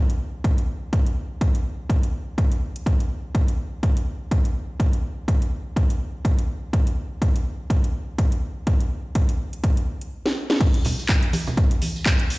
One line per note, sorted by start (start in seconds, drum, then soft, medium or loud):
0.10 closed hi-hat soft
0.44 kick loud
0.44 closed hi-hat medium
0.58 closed hi-hat soft
0.93 kick loud
0.93 closed hi-hat medium
1.06 closed hi-hat soft
1.41 kick loud
1.41 closed hi-hat medium
1.55 closed hi-hat soft
1.90 kick loud
1.90 closed hi-hat medium
2.03 closed hi-hat soft
2.38 kick loud
2.38 closed hi-hat medium
2.52 closed hi-hat soft
2.76 closed hi-hat soft
2.86 kick loud
2.86 closed hi-hat medium
3.00 closed hi-hat soft
3.35 kick loud
3.35 closed hi-hat medium
3.48 closed hi-hat soft
3.83 kick loud
3.83 closed hi-hat medium
3.97 closed hi-hat soft
4.31 kick loud
4.31 closed hi-hat medium
4.45 closed hi-hat soft
4.80 kick loud
4.80 closed hi-hat medium
4.93 closed hi-hat soft
5.28 kick loud
5.28 closed hi-hat medium
5.42 closed hi-hat soft
5.76 kick loud
5.76 closed hi-hat medium
5.90 closed hi-hat soft
6.25 kick loud
6.25 closed hi-hat medium
6.39 closed hi-hat soft
6.73 kick loud
6.73 closed hi-hat medium
6.87 closed hi-hat soft
7.22 kick loud
7.22 closed hi-hat medium
7.36 closed hi-hat soft
7.70 kick loud
7.70 closed hi-hat medium
7.84 closed hi-hat medium
8.18 kick loud
8.18 closed hi-hat medium
8.32 closed hi-hat medium
8.67 kick loud
8.67 closed hi-hat medium
8.80 closed hi-hat soft
9.15 kick loud
9.15 closed hi-hat medium
9.29 closed hi-hat medium
9.53 closed hi-hat soft
9.64 kick loud
9.64 closed hi-hat medium
9.77 closed hi-hat medium
10.01 closed hi-hat soft
10.26 snare medium
10.50 snare medium
10.61 kick loud
10.61 closed hi-hat medium
10.61 crash loud
10.61 tambourine soft
10.61 shaker soft
10.74 closed hi-hat medium
10.85 open hi-hat loud
10.85 tambourine medium
10.85 low conga medium
10.85 shaker medium
10.99 tambourine medium
10.99 shaker soft
11.09 kick loud
11.09 clap loud
11.09 closed hi-hat medium
11.09 shaker soft
11.23 closed hi-hat medium
11.33 open hi-hat loud
11.33 tambourine loud
11.33 high conga medium
11.33 shaker medium
11.47 tambourine medium
11.47 low conga medium
11.47 shaker soft
11.57 kick loud
11.57 closed hi-hat medium
11.57 tambourine soft
11.57 shaker soft
11.71 closed hi-hat medium
11.82 open hi-hat loud
11.82 tambourine medium
11.82 high conga medium
11.82 shaker medium
11.96 tambourine medium
11.96 shaker soft
12.06 kick loud
12.06 clap loud
12.06 closed hi-hat medium
12.06 shaker soft
12.19 closed hi-hat medium
12.30 open hi-hat loud
12.30 tambourine medium
12.30 shaker medium